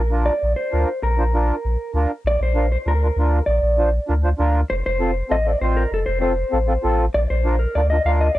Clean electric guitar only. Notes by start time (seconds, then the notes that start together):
0.26 D5
0.56 C5
1.03 A#4
2.27 D5
2.43 C5
2.72 C5
2.88 A#4
3.46 D5
4.70 C5
4.86 C5
5.31 D#5
5.47 D5
5.61 C5
5.77 A#4
5.94 A4
6.06 C5
6.22 C5
7.14 D5
7.30 C5
7.59 A#4
7.75 D5
7.90 D#5
8.06 F5
8.21 D#5
8.35 D5